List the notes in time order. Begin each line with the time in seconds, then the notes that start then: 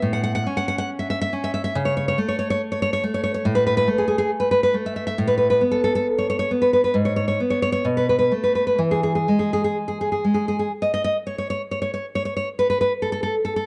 0.02 A2
0.13 F#5
0.23 F#5
0.35 F#5
0.47 C#4
0.57 F#5
0.68 F#5
0.78 F#5
0.99 E5
1.10 E5
1.22 E5
1.33 C#4
1.44 E5
1.54 E5
1.64 E5
1.75 C#3
1.85 C#5
1.97 C#5
2.08 C#5
2.18 A3
2.29 C#5
2.39 C#5
2.50 C#5
2.72 C#5
2.82 C#5
2.93 C#5
3.04 A3
3.14 C#5
3.24 C#5
3.34 C#5
3.45 A2
3.55 B4
3.67 B4
3.77 B4
3.88 A3
3.98 G#4
4.08 G#4
4.18 G#4
4.40 B4
4.51 B4
4.63 B4
4.74 A3
4.86 E5
4.96 E5
5.07 E5
5.18 A2
5.27 B4
5.38 B4
5.50 B4
5.61 B3
5.71 A4
5.84 A4
5.95 A4
6.18 C#5
6.30 C#5
6.39 C#5
6.51 B3
6.62 B4
6.73 B4
6.84 B4
6.94 G#2
7.05 C#5
7.16 C#5
7.28 C#5
7.40 B3
7.50 C#5
7.62 C#5
7.72 C#5
7.85 B2
7.97 B4
8.09 B4
8.19 B4
8.32 A3
8.44 B4
8.55 B4
8.67 B4
8.78 E3
8.91 G#4
9.03 G#4
9.15 G#4
9.28 G#3
9.39 G#4
9.53 G#4
9.64 G#4
9.88 G#4
10.01 G#4
10.12 G#4
10.24 G#3
10.34 G#4
10.48 G#4
10.59 G#4
10.82 D#5
10.94 D#5
11.04 D#5
11.27 C#5
11.38 C#5
11.50 C#5
11.71 C#5
11.82 C#5
11.94 C#5
12.15 C#5
12.25 C#5
12.37 C#5
12.59 B4
12.70 B4
12.81 B4
13.02 A4
13.12 A4
13.23 A4
13.45 A4
13.56 A4